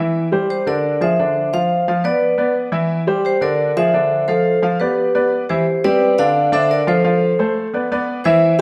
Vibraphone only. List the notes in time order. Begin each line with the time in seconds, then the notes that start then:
0.50 G4 C5
0.67 A#4 D5
1.02 C5 E5
1.53 C5 F5
2.04 B4 D5
3.25 G4 C5
3.42 A#4 D5
3.77 C5 E5
4.28 A4 C5
4.80 G4 B4
5.49 G4 C5
5.84 B4 D5
6.18 D5 F5
6.53 C5 E5
6.71 A#4 D5
6.88 A4 C5
8.24 C5 E5